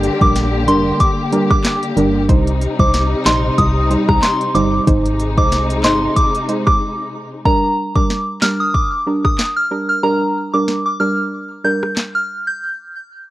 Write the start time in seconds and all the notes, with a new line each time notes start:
Already playing: D3 A#3 G4
0.03 closed hi-hat
0.21 A#1 G3 D4 A#4 D6, kick
0.36 snare, closed hi-hat
0.68 F1 G3 D4 A#4 C6, closed hi-hat
1.00 D6, kick, closed hi-hat
1.32 G3 D4 A#4, closed hi-hat
1.50 D6, kick, cross-stick
1.65 snare, clap, closed hi-hat
1.83 closed hi-hat
1.97 G1 G3 D4 A#4, closed hi-hat
2.29 C2 C3 G3 D#4 C5, kick, closed hi-hat
2.47 closed hi-hat
2.61 closed hi-hat
2.79 C2 G3 D#4 C5 D6, kick
2.94 snare, closed hi-hat
3.26 A#1 G3 D#4 C5 C6, snare, clap, closed hi-hat
3.58 C2 D#6, kick, closed hi-hat
3.90 G3 D#4 C5, closed hi-hat
4.09 C2 A#5, kick, cross-stick
4.22 C6, snare, clap, closed hi-hat
4.41 closed hi-hat
4.55 G1 G3 D#4 C5 D6, closed hi-hat
4.87 G#1 C3 G#3 D#4 C5, kick, closed hi-hat
5.06 closed hi-hat
5.20 closed hi-hat
5.37 C2 G#3 D#4 C5 D6, kick
5.52 snare, closed hi-hat
5.70 closed hi-hat
5.84 G1 G#3 D#4 C5 C6, snare, clap, closed hi-hat
6.16 D6, kick, closed hi-hat
6.35 closed hi-hat
6.49 G#3 D#4 C5, closed hi-hat
6.67 D6, kick, cross-stick
7.45 G3 D4 A#4 A#5, kick
7.95 G3 D4 A#4 D6, kick
8.10 snare
8.42 G3 D4 A#4 F6, snare, clap
8.60 D#6
8.74 D6, kick
9.07 G3 D4 A#4
9.25 D#6, kick, cross-stick
9.39 snare, clap
9.56 F6
9.71 G3 D4 A#4
9.89 F6
10.03 G3 D4 A#4 A#5
10.53 G3 D4 A#4 D6
10.68 snare
10.86 D6
11.00 G3 D4 A#4 F6
11.64 G3 D4 A#4 G6
11.83 cross-stick
11.97 snare, clap
12.15 F6
12.47 G6